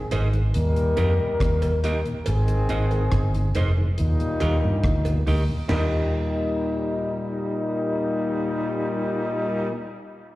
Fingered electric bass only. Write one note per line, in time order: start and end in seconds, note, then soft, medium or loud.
0.13 0.52 G#1 medium
0.56 0.95 D#2 loud
0.98 1.18 F2 medium
1.41 2.02 D#2 medium
2.28 2.66 G#1 loud
2.71 3.09 G#1 medium
3.13 3.52 G1 medium
3.57 3.95 F1 medium
4.00 4.19 D#2 medium
4.42 4.62 D#2 medium
4.64 4.83 G2 medium
4.84 5.23 D2 medium
5.28 5.48 D2 medium
5.71 9.74 D#2 medium